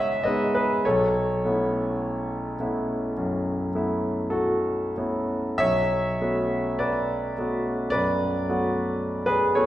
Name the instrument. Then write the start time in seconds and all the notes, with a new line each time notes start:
grand piano
Already playing: G#2 G#3 B3 D#4 G#4 C#5 D#5 E5 F#5
0.23 G#3 B3 D#4 G#4 B4 D#5
0.55 G#4 B4
0.85 B1 A4 C#5
1.45 A3 B3 C#4 E4
2.60 A3 B3 C#4 E4
3.17 F#2
3.75 A3 B3 C#4 E4
4.30 F#4 A4
4.97 A3 B3 C#4 E4
5.58 B1 C#5 E5
6.21 A3 B3 C#4 F#4
6.79 B4 D5
7.38 A3 B3 C#4 F#4
7.90 F#2 B4 D5
8.49 A3 B3 C#4 F#4
9.26 G#4 B4
9.55 A3 B3 C#4 F#4 A4 C#5